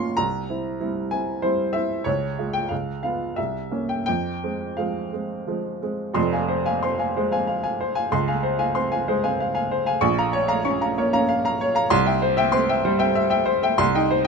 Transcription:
0.00 0.20 A#2 medium
0.00 0.21 A#3 soft
0.00 0.21 C#4 soft
0.00 0.21 F4 soft
0.00 0.21 G#5 medium
0.00 0.17 A#5 medium
0.00 0.18 C6 medium
0.00 0.21 C#6 medium
0.17 0.48 C2 medium
0.17 1.11 A#5 medium
0.49 0.77 C4 soft
0.49 0.78 E4 soft
0.80 1.09 G3 soft
0.80 1.09 C4 soft
0.80 1.09 E4 soft
1.11 1.41 C4 soft
1.11 1.41 E4 soft
1.11 1.43 G#5 medium
1.42 1.72 G3 soft
1.42 1.72 C4 soft
1.42 1.72 E4 soft
1.42 1.75 C5 medium
1.73 2.03 C4 soft
1.73 2.04 E4 soft
1.73 2.05 E5 medium
2.04 2.37 C#2 medium
2.04 2.53 C#5 medium
2.39 2.68 G#3 soft
2.39 2.68 F4 soft
2.53 2.70 G5 medium
2.69 3.03 C#2 soft
2.69 3.01 F5 medium
3.03 3.34 B3 soft
3.03 3.34 F4 soft
3.03 3.37 F5 medium
3.36 3.71 C2 soft
3.36 3.89 E5 medium
3.71 4.03 A#3 soft
3.71 4.03 C#4 soft
3.89 4.04 G5 medium
4.06 4.42 F2 medium
4.06 4.77 G5 medium
4.44 4.75 G#3 soft
4.44 4.75 C4 soft
4.77 5.10 F3 soft
4.77 5.10 G#3 soft
4.77 5.10 C4 soft
4.77 5.83 F5 medium
5.13 5.45 G#3 soft
5.13 5.45 C4 soft
5.47 5.79 F3 soft
5.47 5.79 G#3 soft
5.47 5.80 C4 soft
5.82 6.13 G#3 soft
5.82 6.13 C4 soft
6.14 8.05 F1 medium
6.14 8.05 F2 medium
6.14 6.42 C6 medium
6.33 6.47 F5 soft
6.33 6.48 G#5 medium
6.48 6.75 C5 medium
6.65 6.80 F5 medium
6.65 6.81 G#5 medium
6.83 7.09 C4 medium
6.83 7.09 C6 medium
6.99 7.13 F5 medium
6.99 7.14 G#5 medium
7.17 7.42 G#3 medium
7.17 7.42 C5 medium
7.32 7.57 C4 medium
7.32 7.46 F5 medium
7.32 7.46 G#5 medium
7.47 7.62 F5 medium
7.63 7.77 F5 medium
7.63 7.77 G#5 medium
7.80 8.05 C5 medium
7.95 8.10 F5 medium
7.95 8.09 G#5 medium
8.12 9.99 C#2 medium
8.12 8.37 C6 medium
8.28 8.42 F5 medium
8.28 8.42 G#5 medium
8.43 8.69 C5 medium
8.59 8.73 F5 medium
8.59 8.73 G#5 medium
8.75 9.01 C4 medium
8.75 9.01 C6 medium
8.92 9.06 F5 medium
8.92 9.06 G#5 medium
9.08 9.34 G#3 medium
9.08 9.33 C5 medium
9.24 9.49 C4 medium
9.24 9.38 F5 medium
9.24 9.38 G#5 medium
9.40 9.53 F5 medium
9.54 9.69 F5 medium
9.54 9.69 G#5 medium
9.71 9.96 C5 medium
9.86 10.01 F5 medium
9.86 10.01 G#5 medium
10.01 11.87 A#1 medium
10.01 10.27 C#6 medium
10.18 10.32 F5 medium
10.18 10.32 A#5 medium
10.33 10.59 C#5 medium
10.48 10.63 F5 medium
10.48 10.63 A#5 medium
10.65 10.91 C#4 medium
10.65 10.91 C#6 medium
10.81 10.96 F5 medium
10.81 10.96 A#5 medium
10.98 11.23 A#3 medium
10.98 11.23 C#5 medium
11.13 11.39 C#4 medium
11.13 11.27 F5 medium
11.13 11.28 A#5 medium
11.29 11.43 F5 medium
11.45 11.59 F5 medium
11.45 11.59 A#5 medium
11.61 11.86 C#5 medium
11.75 11.90 F5 medium
11.75 11.90 A#5 medium
11.90 13.73 C2 loud
11.90 12.16 C6 medium
12.06 12.21 E5 medium
12.06 12.21 G5 medium
12.22 12.47 C5 medium
12.37 12.52 E5 medium
12.37 12.52 G5 medium
12.52 12.78 C4 medium
12.52 12.78 C6 medium
12.69 12.83 E5 medium
12.69 12.83 G5 medium
12.85 13.09 G3 medium
12.85 13.09 C5 medium
12.99 13.24 C4 medium
12.99 13.13 E5 medium
12.99 13.14 G5 medium
13.15 13.29 E5 medium
13.30 13.45 E5 medium
13.30 13.45 G5 medium
13.46 13.71 C5 medium
13.63 13.77 E5 medium
13.63 13.77 G5 medium
13.78 14.27 C2 medium
13.78 14.03 C6 medium
13.95 14.19 D#4 medium
13.95 14.08 D#5 medium
13.95 14.08 G5 medium
14.11 14.27 C5 medium

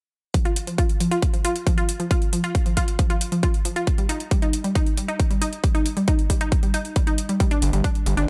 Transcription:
0.34 0.39 F3 medium
0.34 kick loud
0.34 closed hi-hat medium
0.45 0.50 F4 loud
0.45 closed hi-hat soft
0.56 closed hi-hat medium
0.67 0.72 F3 medium
0.67 closed hi-hat soft
0.78 0.83 F4 loud
0.78 kick loud
0.78 closed hi-hat medium
0.89 closed hi-hat soft
1.00 1.05 F3 medium
1.00 closed hi-hat medium
1.11 1.16 F4 medium
1.11 closed hi-hat soft
1.22 kick loud
1.22 closed hi-hat medium
1.34 1.38 F3 medium
1.34 closed hi-hat soft
1.45 1.49 F4 loud
1.45 closed hi-hat medium
1.56 closed hi-hat soft
1.67 1.71 F3 medium
1.67 kick loud
1.67 closed hi-hat medium
1.78 1.82 F4 medium
1.78 closed hi-hat soft
1.89 closed hi-hat medium
2.00 2.04 F3 medium
2.00 closed hi-hat soft
2.11 2.15 F4 loud
2.11 kick loud
2.11 closed hi-hat medium
2.22 closed hi-hat soft
2.33 2.37 F3 medium
2.33 closed hi-hat medium
2.44 2.48 F4 loud
2.44 closed hi-hat soft
2.55 kick loud
2.55 closed hi-hat medium
2.66 2.71 F3 medium
2.66 closed hi-hat soft
2.77 2.82 F4 medium
2.77 kick medium
2.77 closed hi-hat medium
2.88 closed hi-hat soft
2.99 3.04 F3 medium
2.99 kick loud
2.99 closed hi-hat medium
3.10 3.15 F4 medium
3.10 closed hi-hat soft
3.21 closed hi-hat medium
3.32 3.37 F3 medium
3.32 closed hi-hat soft
3.43 3.48 F4 medium
3.43 kick loud
3.43 closed hi-hat medium
3.54 closed hi-hat soft
3.65 3.70 F3 medium
3.65 closed hi-hat medium
3.76 3.81 F4 loud
3.76 closed hi-hat soft
3.87 kick loud
3.87 closed hi-hat medium
3.98 4.03 G3 medium
3.98 closed hi-hat soft
4.09 4.14 D#4 loud
4.09 closed hi-hat medium
4.20 closed hi-hat soft
4.31 4.36 G3 medium
4.31 kick loud
4.31 closed hi-hat medium
4.42 4.47 D#4 loud
4.42 closed hi-hat soft
4.53 closed hi-hat medium
4.64 4.69 G3 medium
4.64 closed hi-hat soft
4.75 4.80 D#4 loud
4.75 kick loud
4.75 closed hi-hat medium
4.86 closed hi-hat soft
4.97 5.02 G3 medium
4.97 closed hi-hat medium
5.08 5.13 D#4 medium
5.08 closed hi-hat soft
5.20 kick loud
5.20 closed hi-hat medium
5.30 5.35 G3 medium
5.30 closed hi-hat soft
5.42 5.46 D#4 medium
5.42 closed hi-hat medium
5.53 closed hi-hat soft
5.64 5.68 G3 medium
5.64 kick loud
5.64 closed hi-hat medium
5.75 5.79 D#4 loud
5.75 closed hi-hat soft
5.86 closed hi-hat medium
5.97 6.01 G3 medium
5.97 closed hi-hat soft
6.08 6.12 D#4 loud
6.08 kick loud
6.08 closed hi-hat medium
6.19 closed hi-hat soft
6.30 6.34 G3 medium
6.30 kick medium
6.30 closed hi-hat medium
6.41 6.46 D#4 medium
6.41 closed hi-hat soft
6.52 kick loud
6.52 closed hi-hat medium
6.63 6.68 G3 medium
6.63 closed hi-hat soft
6.74 6.79 D#4 loud
6.74 closed hi-hat medium
6.85 closed hi-hat soft
6.96 7.01 G3 medium
6.96 kick loud
6.96 closed hi-hat medium
7.07 7.12 D#4 medium
7.07 closed hi-hat soft
7.18 closed hi-hat medium
7.29 7.34 G3 medium
7.29 closed hi-hat soft
7.40 7.45 G3 medium
7.40 kick loud
7.40 closed hi-hat medium
7.51 7.56 D4 loud
7.51 closed hi-hat soft
7.62 7.71 G1 medium
7.62 closed hi-hat medium
7.73 7.82 G1 medium
7.73 7.78 G3 medium
7.73 closed hi-hat soft
7.84 7.89 D4 loud
7.84 kick loud
7.84 closed hi-hat medium
7.95 closed hi-hat soft
8.06 8.15 G1 medium
8.06 8.11 G3 medium
8.06 closed hi-hat medium
8.17 8.26 G1 medium
8.17 8.22 D4 loud
8.17 closed hi-hat soft

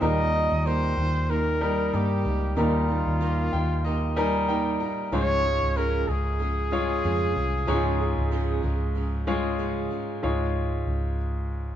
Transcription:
0.01 0.48 D#2 loud
0.01 0.93 A#2 medium
0.01 0.33 D#3 medium
0.01 0.94 G3 medium
0.01 0.34 A#3 medium
0.01 0.94 D#4 medium
0.01 0.34 D#4 medium
0.01 0.32 G4 medium
0.01 0.94 A#4 medium
0.01 0.68 D#5 loud
0.33 0.65 A#3 soft
0.33 0.65 D#4 soft
0.33 0.65 G4 medium
0.52 0.94 D#2 medium
0.65 0.97 D#3 medium
0.65 0.98 A#3 medium
0.65 0.97 D#4 medium
0.65 0.96 G4 medium
0.65 1.32 C5 loud
0.97 1.89 D#2 medium
0.97 1.28 A#3 soft
0.97 1.29 D#4 soft
0.97 1.29 G4 medium
1.29 1.61 D#3 medium
1.29 1.61 A#3 medium
1.29 1.61 D#4 medium
1.29 1.60 G4 medium
1.29 1.96 A#4 medium
1.61 2.31 G3 medium
1.61 1.92 A#3 soft
1.61 2.31 D#4 medium
1.61 1.93 D#4 medium
1.61 1.93 G4 soft
1.61 2.31 A#4 medium
1.93 2.23 G2 medium
1.93 2.25 D#3 medium
1.93 2.25 A#3 medium
1.93 2.25 D#4 medium
1.93 2.58 G4 medium
1.93 2.24 G4 medium
2.25 2.55 C#2 medium
2.25 2.56 A#3 soft
2.25 2.57 D#4 medium
2.25 2.57 G4 medium
2.56 3.03 D#2 loud
2.56 3.49 A#2 medium
2.56 2.89 D#3 medium
2.56 3.49 G3 medium
2.56 2.89 A#3 medium
2.56 3.50 D#4 medium
2.56 2.89 D#4 medium
2.56 4.45 F4 medium
2.56 2.87 G4 medium
2.56 3.50 A#4 medium
2.88 3.20 A#3 soft
2.88 3.21 D#4 soft
2.88 3.21 G4 medium
3.06 3.49 D#2 medium
3.21 3.53 D#3 medium
3.21 3.53 A#3 medium
3.21 3.53 D#4 medium
3.21 3.51 G4 medium
3.52 4.76 D#2 medium
3.52 3.84 A#3 soft
3.52 3.85 D#4 medium
3.52 3.85 G4 medium
3.52 3.82 G5 medium
3.84 4.16 D#3 medium
3.84 4.17 A#3 medium
3.84 4.17 D#4 medium
3.84 4.15 G4 medium
3.84 4.14 D#5 medium
4.16 4.86 G3 medium
4.16 4.48 A#3 soft
4.16 4.87 D#4 medium
4.16 4.48 D#4 medium
4.16 4.48 G4 medium
4.16 4.87 A#4 medium
4.16 4.46 G#5 medium
4.48 4.80 D#3 medium
4.48 4.81 A#3 medium
4.48 4.80 D#4 medium
4.48 4.79 G4 medium
4.48 4.78 G5 medium
4.80 5.13 A#3 soft
4.80 5.13 D#4 soft
4.80 5.12 G4 soft
4.80 5.10 A#5 medium
5.12 5.59 C#2 loud
5.12 6.04 G#2 medium
5.12 5.44 C#3 medium
5.12 5.44 F3 medium
5.12 6.05 G#3 medium
5.12 5.45 G#3 medium
5.12 5.44 C#4 medium
5.12 6.05 F4 medium
5.12 5.42 G#4 medium
5.12 6.05 C#5 medium
5.12 5.79 C#5 loud
5.44 5.76 G#3 soft
5.44 5.76 C#4 medium
5.44 5.76 G#4 medium
5.63 6.05 C#2 medium
5.76 6.08 C#3 medium
5.76 6.08 F3 medium
5.76 6.08 G#3 medium
5.76 6.08 C#4 medium
5.76 6.06 G#4 medium
5.76 6.10 A#4 loud
6.08 7.00 C#2 medium
6.08 6.39 G#3 soft
6.08 6.40 C#4 medium
6.08 6.40 G#4 medium
6.08 9.60 G#4 medium
6.39 6.72 F3 medium
6.39 6.72 G#3 medium
6.39 6.72 C#4 medium
6.39 6.70 G#4 medium
6.71 7.42 G#3 medium
6.71 7.04 C#4 medium
6.71 7.42 F4 medium
6.71 7.03 G#4 medium
6.71 7.42 C#5 medium
7.04 7.34 F2 medium
7.04 7.36 C#3 medium
7.04 7.36 F3 medium
7.04 7.36 G#3 medium
7.04 7.36 C#4 medium
7.04 7.34 G#4 medium
7.35 7.66 C2 medium
7.35 7.67 G#3 soft
7.35 7.67 C#4 soft
7.35 7.67 G#4 medium
7.67 8.14 C#2 loud
7.67 8.60 G#2 medium
7.67 7.99 C#3 medium
7.67 8.00 F3 medium
7.67 8.60 G#3 medium
7.67 8.00 G#3 medium
7.67 8.00 C#4 medium
7.67 7.75 D#4 medium
7.67 7.98 G#4 medium
7.67 8.61 C#5 medium
7.74 8.64 F4 medium
7.99 8.31 G#3 soft
7.99 8.32 C#4 medium
7.99 8.31 G#4 soft
8.18 8.60 C#2 medium
8.31 8.63 C#3 medium
8.31 8.64 F3 medium
8.31 8.64 G#3 medium
8.31 8.63 C#4 medium
8.31 8.61 G#4 medium
8.63 9.87 C#2 medium
8.63 8.95 G#3 soft
8.63 8.96 C#4 medium
8.63 8.95 G#4 medium
8.95 9.27 F3 medium
8.95 9.28 G#3 medium
8.95 9.27 C#4 medium
8.95 9.25 G#4 medium
9.26 9.97 G#3 medium
9.26 9.58 G#3 soft
9.26 9.59 C#4 medium
9.26 9.97 F4 medium
9.26 9.59 G#4 medium
9.26 9.97 C#5 medium
9.58 9.91 C#3 medium
9.58 9.91 F3 medium
9.58 9.91 G#3 medium
9.58 9.91 C#4 medium
9.58 9.89 G#4 medium
9.90 10.24 G#3 soft
9.90 10.23 C#4 medium
9.90 10.23 G#4 medium
10.23 10.83 C#2 medium
10.23 11.15 G#2 medium
10.23 11.16 G#3 medium
10.23 11.16 F4 medium
10.23 11.16 C#5 medium
10.87 11.76 C#2 medium

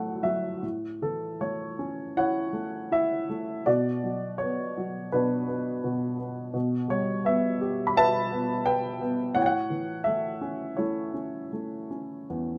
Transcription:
0.00 0.59 D2 medium
0.00 0.59 A2 medium
0.00 0.66 D3 medium
0.00 0.23 F#3 medium
0.00 0.62 A3 medium
0.00 0.22 F#5 medium
0.23 0.61 F#3 medium
0.23 0.60 E5 medium
0.63 3.63 A2 soft
1.02 2.51 E3 soft
1.02 1.38 A4 medium
1.41 2.51 A3 soft
1.41 2.17 C#5 medium
1.79 3.25 C#4 soft
2.17 2.90 E4 medium
2.17 3.64 C#5 medium
2.17 2.94 F#5 medium
2.53 3.28 A3 soft
2.92 3.64 E4 soft
2.92 3.63 E5 medium
3.30 3.66 A3 soft
3.66 5.12 B2 medium
3.66 5.09 F#4 medium
3.66 4.42 D5 medium
4.04 4.76 F#3 soft
4.38 5.46 B3 soft
4.38 5.08 C#5 medium
4.77 6.17 F#3 soft
5.12 5.82 B2 medium
5.12 6.51 D4 medium
5.12 6.16 B4 medium
5.48 6.17 B3 soft
5.84 6.52 B2 medium
6.18 6.53 B3 soft
6.54 9.32 B2 medium
6.88 8.26 G3 soft
6.88 7.26 C#5 medium
7.25 8.30 B3 medium
7.25 7.91 E5 medium
7.61 8.98 G4 medium
7.87 7.94 B5 medium
7.97 8.65 B4 medium
7.97 9.33 E5 medium
7.97 8.69 A5 loud
8.32 9.00 B3 soft
8.66 9.34 B4 medium
8.66 9.38 G5 medium
9.01 9.35 B3 medium
9.35 12.26 A2 medium
9.35 10.75 C#5 medium
9.35 9.42 F#5 medium
9.42 9.49 G5 medium
9.46 10.07 F#5 medium
9.70 11.11 E3 soft
10.04 10.77 A3 soft
10.04 10.79 E5 medium
10.41 11.13 C#4 soft
10.77 11.51 A3 medium
10.77 12.27 E4 soft
10.77 11.87 C#5 medium
11.14 11.89 C#4 soft
11.53 12.58 A3 soft
11.91 12.58 C#4 soft
12.30 12.58 E2 soft

